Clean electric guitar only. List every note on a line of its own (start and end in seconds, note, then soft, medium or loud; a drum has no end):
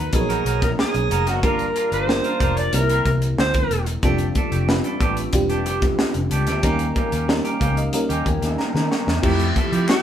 0.13 muted clean electric guitar stroke soft
0.29 0.44 D#4 medium
0.29 0.45 F#4 medium
0.29 0.46 A#4 medium
0.45 0.62 D#4 medium
0.45 0.62 F#4 medium
0.45 0.60 A#4 medium
0.62 muted clean electric guitar stroke soft
0.78 muted clean electric guitar stroke soft
0.94 muted clean electric guitar stroke soft
1.10 1.27 D#4 medium
1.10 1.27 F#4 medium
1.10 1.26 A#4 medium
1.27 1.43 D#4 medium
1.27 1.44 F#4 medium
1.27 1.44 A#4 medium
1.43 1.65 D4 medium
1.43 1.65 F4 medium
1.43 1.66 A#4 medium
1.75 1.92 D4 soft
1.75 1.92 F4 medium
1.75 1.91 A#4 medium
1.92 2.07 D4 soft
1.92 2.08 F4 soft
1.92 2.08 A#4 medium
2.08 muted clean electric guitar stroke soft
2.25 2.39 D4 medium
2.25 2.40 F4 medium
2.25 2.41 A#4 medium
2.41 2.62 D4 medium
2.41 2.57 F4 medium
2.41 2.56 A#4 medium
2.57 muted clean electric guitar stroke soft
2.73 muted clean electric guitar stroke soft
2.89 3.05 C4 medium
2.89 3.06 E4 medium
2.89 3.06 A#4 medium
3.06 muted clean electric guitar stroke soft
3.22 muted clean electric guitar stroke soft
3.55 muted clean electric guitar stroke soft
3.87 muted clean electric guitar stroke soft
4.03 4.25 A3 medium
4.03 4.25 D4 medium
4.03 4.26 G4 medium
4.36 4.53 A3 medium
4.36 4.52 D4 medium
4.36 4.52 A4 medium
4.52 4.67 A3 soft
4.52 4.68 D4 soft
4.52 4.68 G4 medium
4.69 muted clean electric guitar stroke soft
4.85 4.99 A3 soft
4.85 5.00 D4 soft
4.85 5.02 A4 medium
5.01 5.23 A3 medium
5.01 5.17 D4 medium
5.01 5.16 G4 medium
5.17 muted clean electric guitar stroke soft
5.33 muted clean electric guitar stroke soft
5.49 5.65 A3 medium
5.49 5.66 D4 medium
5.49 5.66 G4 medium
5.66 5.83 A3 medium
5.66 5.82 D4 medium
5.66 5.81 G4 medium
5.82 muted clean electric guitar stroke medium
5.98 muted clean electric guitar stroke soft
6.15 muted clean electric guitar stroke soft
6.31 6.48 A3 medium
6.31 6.47 D4 medium
6.31 6.46 G4 medium
6.47 6.63 A3 soft
6.47 6.64 D4 medium
6.47 6.64 G4 medium
6.63 6.85 A#3 medium
6.63 6.86 C#4 medium
6.63 6.86 G4 loud
6.96 7.13 A#3 medium
6.96 7.12 C#4 medium
6.96 7.11 G4 medium
7.12 7.27 A#3 soft
7.12 7.28 C#4 medium
7.12 7.28 G4 soft
7.28 muted clean electric guitar stroke soft
7.44 7.59 A#3 soft
7.44 7.60 C#4 medium
7.44 7.61 G4 medium
7.61 7.83 A#3 medium
7.61 7.77 C#4 medium
7.61 7.76 G4 medium
7.77 muted clean electric guitar stroke soft
7.94 muted clean electric guitar stroke soft
8.09 8.25 A#3 medium
8.09 8.25 C#4 medium
8.09 8.26 G4 medium
8.26 muted clean electric guitar stroke soft
8.42 muted clean electric guitar stroke soft
8.58 muted clean electric guitar stroke soft
8.74 muted clean electric guitar stroke soft
9.07 muted clean electric guitar stroke soft
9.23 9.45 A3 medium
9.23 9.46 E4 medium
9.23 9.46 G4 medium
9.56 9.73 A3 medium
9.56 9.72 E4 medium
9.56 9.72 A4 medium
9.72 9.88 A3 soft
9.72 9.88 E4 medium
9.72 9.89 G4 medium
9.89 muted clean electric guitar stroke soft